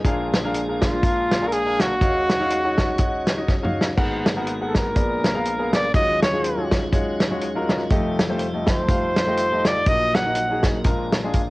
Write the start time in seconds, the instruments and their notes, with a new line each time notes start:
Already playing: tonewheel organ G#4
0.05 grand piano A#1 A#2 D4 G#4 A#4 F5, tonewheel organ G#3 A#3 D4, kick, closed hi-hat
0.34 snare, closed hi-hat
0.44 grand piano D4 G#4 A#4 F5
0.54 closed hi-hat
0.68 grand piano D4 G#4 A#4 F5
0.82 trumpet F4, kick, snare, closed hi-hat
1.03 grand piano D4 G#4 A#4 F5, kick, closed hi-hat
1.31 snare, closed hi-hat
1.41 grand piano D4 G#4 A#4 F5
1.47 trumpet A#4
1.52 trumpet G#4, closed hi-hat
1.65 grand piano D4 G#4 A#4 F5
1.79 trumpet F#4, snare, closed hi-hat
2.01 grand piano D#2 D#3 D#4 F#4 C#5 F5, tonewheel organ C#4 D#4 F#4, kick, closed hi-hat
2.29 snare, closed hi-hat
2.39 grand piano D#4 F#4 C#5 F5
2.50 closed hi-hat
2.64 grand piano D#4 F#4 C#5 F#5
2.78 kick, snare, closed hi-hat
2.98 grand piano D#4 F#4 C#5 F#5, kick, closed hi-hat
3.27 snare, closed hi-hat
3.37 grand piano D#4 F#4 C#5 D#5
3.48 kick, snare
3.62 grand piano D#4 F#4 C#5 F5, mid tom
3.81 snare
3.97 grand piano G#1 G#2 B3 G#4 A#4 F#5, tonewheel organ G#3 A#3 A#4, kick, crash
4.26 snare, closed hi-hat
4.36 grand piano B3 G#4 A#4 F#5
4.47 closed hi-hat
4.60 grand piano B3 G#4 A#4 F#5
4.68 trumpet A4
4.75 trumpet A#4, kick, snare, closed hi-hat
4.95 grand piano A#1 A#2 B3 G#4 A#4 D5, tonewheel organ D4, kick, closed hi-hat
5.24 snare, closed hi-hat
5.34 grand piano B3 G#4 A#4 F5
5.45 closed hi-hat
5.58 grand piano B3 G#4 A#4 F5
5.73 trumpet D5, snare, closed hi-hat
5.94 grand piano D#2 D#3 G#3 F4 F#4 C#5, tonewheel organ F#3 C#4 D#4 F4 G#4, trumpet D#5, kick, closed hi-hat
6.22 trumpet C#5, snare, closed hi-hat
6.32 grand piano G#3 F4 F#4 G#4
6.44 closed hi-hat
6.57 grand piano G#3 F4 F#4 C#5
6.71 kick, snare, closed hi-hat
6.92 grand piano G#3 F4 F#4 C#5, kick, closed hi-hat
7.20 snare, closed hi-hat
7.30 grand piano G#3 F4 F#4 C#5
7.41 closed hi-hat
7.55 grand piano G#3 F4 F#4 A#4
7.69 snare, closed hi-hat
7.90 grand piano F1 F2 A3 F4 G4 D#5, tonewheel organ G3 A4, kick, closed hi-hat
8.19 snare, closed hi-hat
8.29 grand piano A3 F4 G4 C5
8.39 closed hi-hat
8.54 grand piano A3 F4 G4 D#5
8.67 trumpet C5, kick, snare, closed hi-hat
8.88 grand piano A3 F4 G4 F5, kick, closed hi-hat
9.16 snare, closed hi-hat
9.26 grand piano A3 F4 G4 D#5
9.37 closed hi-hat
9.51 grand piano A3 F4 G4 D#5
9.65 trumpet D5, snare, closed hi-hat
9.86 grand piano A#1 A#2 A#3 D#4 F#4 D#5, tonewheel organ A#2 F#3 A#3 A#4, trumpet D#5, kick, closed hi-hat
10.15 trumpet F#5, snare, closed hi-hat
10.25 grand piano A#3 D#4 F#4 D#5
10.35 closed hi-hat
10.50 grand piano A#3 D#4 F#4 G#4
10.63 kick, snare, closed hi-hat
10.84 grand piano A#1 A#2 G#3 D4 F4 A#4, tonewheel organ G#3 D4 F4, kick, closed hi-hat
11.12 snare, closed hi-hat
11.23 grand piano G#3 D4 F4 G#4
11.33 grand piano D5 F5, kick, closed hi-hat